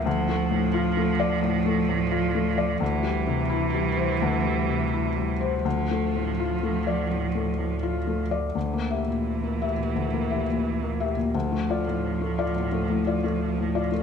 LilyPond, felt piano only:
\new Staff \with { instrumentName = "Felt piano" } { \time 4/4 \key d \minor \tempo 4 = 87 \tuplet 3/2 { d,8 a8 a,8 f'8 a8 d''8 a,8 a8 a,8 f'8 a8 d''8 } | \tuplet 3/2 { d,8 g8 c8 e'8 g8 c''8 d,8 g8 c8 e'8 g8 c''8 } | \tuplet 3/2 { d,8 a8 a,8 f'8 a8 d''8 a,8 a8 a,8 f'8 a8 d''8 } | d,16 bes16 <g' e''>16 bes,8 bes16 <g' e''>16 bes,16 d,16 bes16 <g' e''>16 bes,8 bes16 <g' e''>16 bes,16 |
d,16 a16 <f' d''>16 a,8 a16 <f' d''>16 a,16 a16 a,16 <f' d''>16 a8 a,16 <f' d''>16 a16 | }